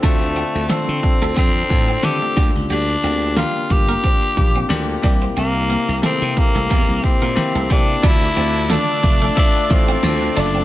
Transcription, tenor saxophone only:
X:1
M:4/4
L:1/16
Q:"Swing 16ths" 1/4=90
K:Dm
V:1 name="Tenor saxophone"
A,4 C4 C4 G3 z | D4 F2 G8 z2 | B,4 C2 B,4 C4 D2 | E4 D4 D2 C4 D2 |]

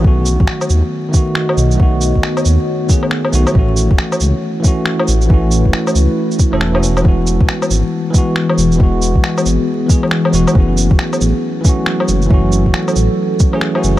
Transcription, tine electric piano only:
X:1
M:4/4
L:1/16
Q:"Swing 16ths" 1/4=137
K:F#dor
V:1 name="Tine electric piano"
[D,A,B,F]8- [D,A,B,F]2 [D,A,B,F]6 | [D,A,B,F]8- [D,A,B,F]2 [D,A,B,G]4 [D,A,B,F]2 | [E,A,CF]8- [E,A,CF]2 [E,A,CF]6 | [E,A,CF]8- [E,A,CF]2 z [E,A,CA]2 [E,A,CF]3 |
[E,G,B,F]8- [E,G,B,F]2 [E,G,B,F]6 | [E,G,B,F]8- [E,G,B,F]2 [E,G,B,G]4 [E,G,B,F]2 | [E,A,CF]8- [E,A,CF]2 [E,A,CF]6 | [E,A,CF]8- [E,A,CF]2 z [E,A,CG]2 [E,A,CF]3 |]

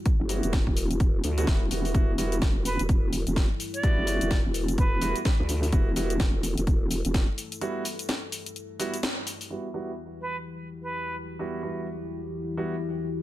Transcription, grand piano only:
X:1
M:4/4
L:1/16
Q:"Swing 16ths" 1/4=127
K:Em
V:1 name="Grand piano"
z2 [G,B,EF]2 z6 z [G,B,EF]2 z [G,B,EF]2 | [G,B,EF] z [G,B,EF] z12 z | [G,B,EF]2 [G,B,EF]2 z6 [G,B,EF] z4 z | [G,B,EF] z [G,B,EF] z12 z |
[G,B,EF]2 z8 [G,B,EF] z4 z | [G,B,EF] z [G,B,EF] z12 z | [G,B,EF]2 [G,B,EF]2 z6 [G,B,EF] z4 z |]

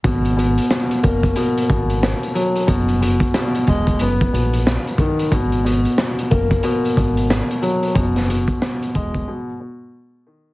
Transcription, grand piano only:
X:1
M:4/4
L:1/8
Q:"Swing 16ths" 1/4=91
K:G#m
V:1 name="Grand piano" clef=bass
B,, B,, B,, A, B,, B,,2 F, | B,, B,, B,, G, B, B,,2 D, | B,, B,, B,, A, B,, B,,2 F, | B,, B,, B,, G, B,, B,,2 D, |]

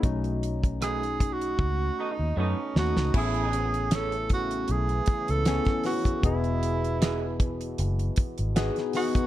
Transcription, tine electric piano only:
X:1
M:4/4
L:1/8
Q:"Swing 16ths" 1/4=78
K:Alyd
V:1 name="Tine electric piano"
[A,CDF]4 z3 [A,CDF] | [B,CEg]4 z2 [B,CEg] [B,CEG] | [B,FGd]4 z2 [B,DFG] [B,DFG] |]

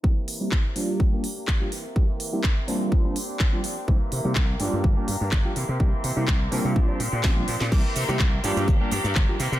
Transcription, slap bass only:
X:1
M:4/4
L:1/16
Q:1/4=125
K:Cmix
V:1 name="Slap bass" clef=bass
z16 | z16 | C,, z C, C, C,, z G,, G,, G,,, z G,, G,, G,,, z C, C, | C,, z C, C, C,, z C, C, B,,, z B,, B,, B,,, z B,, B,, |
C,, z C, C, C,, z G,, G,, G,,, z G,, G,, G,,, z C, C, |]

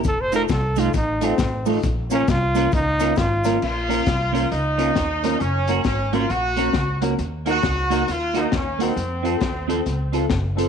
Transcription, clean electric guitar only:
X:1
M:4/4
L:1/8
Q:"Swing" 1/4=134
K:Bbm
V:1 name="Clean electric guitar"
z [=A,EF] z [A,EF] z [A,EF] z [A,EF] | z [B,DF] z [B,DF] z [B,DF] z [B,DF] | z [B,DF] z [B,DF] z [B,DF] z [B,DF] | z [B,DG] z [B,DG] z [B,DG] z [B,DG] |
z [B,EG] z [B,EG] z [B,EG] z [B,EG] | z [CF=A] z [CFA] z [CFA] z [CFA] |]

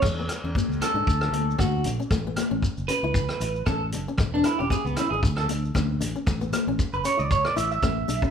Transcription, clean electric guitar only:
X:1
M:4/4
L:1/16
Q:"Swing 16ths" 1/4=115
K:A
V:1 name="Clean electric guitar"
z6 A6 F2 z2 | z6 B6 A2 z2 | z D E =G ^G B, E G z A z6 | z4 z B c d c d e e4- e |]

